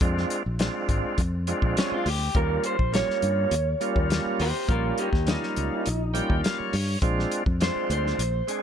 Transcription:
0.01 fingered electric bass F2, tonewheel organ G#3 C4 D4 F4, kick, closed hi-hat
0.18 snare
0.30 closed hi-hat
0.46 fingered electric bass A#1
0.59 tonewheel organ G#3 C4 D4 F4, snare, closed hi-hat
0.89 fingered electric bass G#1, kick, closed hi-hat
1.05 muted fingered electric bass stroke
1.18 fingered electric bass F2, kick, closed hi-hat
1.47 tonewheel organ G#3 C4 D4 F4, closed hi-hat
1.62 fingered electric bass A#1, kick
1.77 clean electric guitar C#4, snare, closed hi-hat
1.92 clean electric guitar F4, muted fingered electric bass stroke
2.06 fingered electric bass D2, clean electric guitar G4, open hi-hat
2.35 fingered electric bass D#2, tonewheel organ G3 A#3 C#4 F4, clean electric guitar A#4, kick, closed hi-hat
2.64 clean electric guitar C5, closed hi-hat
2.79 fingered electric bass A#1, kick
2.92 tonewheel organ G3 A#3 C#4 F4, clean electric guitar C#5, snare, closed hi-hat
3.09 muted fingered electric bass stroke, snare
3.22 fingered electric bass G2, closed hi-hat
3.51 fingered electric bass D#2, closed hi-hat
3.80 tonewheel organ G3 A#3 C#4 F4, closed hi-hat
3.96 fingered electric bass D#2, kick
4.10 snare, closed hi-hat
4.26 muted fingered electric bass stroke
4.40 fingered electric bass D#2, clean electric guitar G4 C5, open hi-hat
4.68 fingered electric bass A#1, tonewheel organ G3 A#3 C#4 F4, clean electric guitar F4 A#4, kick, closed hi-hat
4.98 clean electric guitar D#4 G4, closed hi-hat
5.13 fingered electric bass D#2, kick, snare
5.26 tonewheel organ G3 A#3 C#4 F4, clean electric guitar D#4, snare, closed hi-hat
5.43 snare
5.56 fingered electric bass C#2, closed hi-hat
5.73 muted fingered electric bass stroke
5.86 fingered electric bass A#1, closed hi-hat
6.14 tonewheel organ G3 A#3 C#4 F4 G5, closed hi-hat
6.30 fingered electric bass D#2, kick
6.44 tonewheel organ F5, snare, closed hi-hat
6.58 tonewheel organ C#5, muted fingered electric bass stroke
6.73 fingered electric bass G2, open hi-hat
7.02 fingered electric bass A#1, tonewheel organ G#3 C4 D4 F4, kick, closed hi-hat
7.19 snare
7.32 closed hi-hat
7.46 fingered electric bass F2, kick
7.60 tonewheel organ G#3 C4 D4 F4, clean electric guitar C5, snare, closed hi-hat
7.76 muted fingered electric bass stroke
7.90 fingered electric bass D2, clean electric guitar C5, closed hi-hat
8.07 snare
8.19 fingered electric bass A#1, closed hi-hat
8.47 tonewheel organ G#3 C4 D4 G#4, closed hi-hat

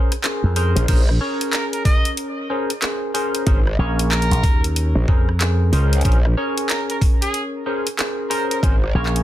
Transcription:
Already playing: tine electric piano C#4 G#4 A#4 C5
0.12 cross-stick, closed hi-hat
0.24 tine electric piano C#4 G#4 A#4 C5, clap, closed hi-hat
0.44 slap bass F2
0.56 tine electric piano C#4 G#4 A#4 C5, open hi-hat
0.76 wobble bass A#1, closed hi-hat
0.88 wobble bass A#1, tine electric piano C#4 G#4 A#4 C5, kick, closed hi-hat, crash
1.09 cross-stick
1.21 tine electric piano C#4 G#4 A#4 C#5
1.41 closed hi-hat
1.53 trumpet A#4, clap, closed hi-hat
1.73 trumpet A#4, closed hi-hat
1.85 trumpet D#5, kick, open hi-hat
2.05 closed hi-hat
2.17 closed hi-hat
2.50 tine electric piano C#4 G#4 A#4 C5
2.70 closed hi-hat
2.82 tine electric piano C#4 G#4 A#4 C5, clap, closed hi-hat
3.14 tine electric piano C#4 G#4 A#4 C5, open hi-hat
3.35 closed hi-hat
3.46 wobble bass G#1, tine electric piano C#4 G#4 A#4 C5, kick, closed hi-hat
3.67 cross-stick
3.78 slap bass A#1, tine electric piano C#4 G#4 A#4 C#5
3.99 closed hi-hat
4.11 trumpet A#4, clap, closed hi-hat
4.22 closed hi-hat
4.31 slap bass A#1, closed hi-hat
4.33 closed hi-hat
4.43 slap bass D#2, kick, open hi-hat
4.64 closed hi-hat
4.76 closed hi-hat
4.95 wobble bass A#1
5.08 slap bass F2, tine electric piano C#4 G#4 A#4 C5, kick
5.29 cross-stick
5.41 tine electric piano C#4 G#4 A#4 C5, clap, closed hi-hat
5.72 wobble bass C#2, tine electric piano C#4 G#4 A#4 C5, open hi-hat
5.93 closed hi-hat
6.01 wobble bass A#1, tine electric piano C#4 G#4 A#4 C5, kick, closed hi-hat
6.05 closed hi-hat
6.12 closed hi-hat
6.25 cross-stick
6.37 tine electric piano C#4 G#4 A#4 C#5
6.58 closed hi-hat
6.69 trumpet A#4, clap, closed hi-hat
6.90 trumpet A#4, closed hi-hat
7.01 kick, open hi-hat
7.21 trumpet G#4, closed hi-hat
7.34 closed hi-hat
7.66 tine electric piano C#4 G#4 A#4 C5
7.87 closed hi-hat
7.98 tine electric piano C#4 G#4 A#4 C5, clap, closed hi-hat
8.30 tine electric piano C#4 G#4 A#4 C5, trumpet A#4, open hi-hat
8.51 trumpet A#4, closed hi-hat
8.63 wobble bass G#1, tine electric piano C#4 G#4 A#4 C5, kick, closed hi-hat
8.84 cross-stick
8.95 slap bass A#1, tine electric piano C#4 G#4 A#4 C#5
9.06 clap
9.16 closed hi-hat

